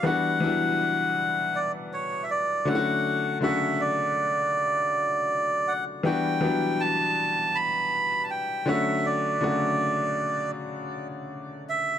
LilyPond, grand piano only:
\new Staff \with { instrumentName = "Grand piano" } { \time 4/4 \key d \major \tempo 4 = 80 <e g b d' fis'>8 <e fis g b d' e'>4. r4. <d fis a cis' e' fis'>8~ | <d fis a cis' e' fis'>8 <cis d fis a fis'>4. r2 | <e g b d' fis'>8 <e fis g b d'>4. r4. <d fis a cis' fis'>8~ | <d fis a cis' fis'>8 <cis d fis a fis'>4. r2 | }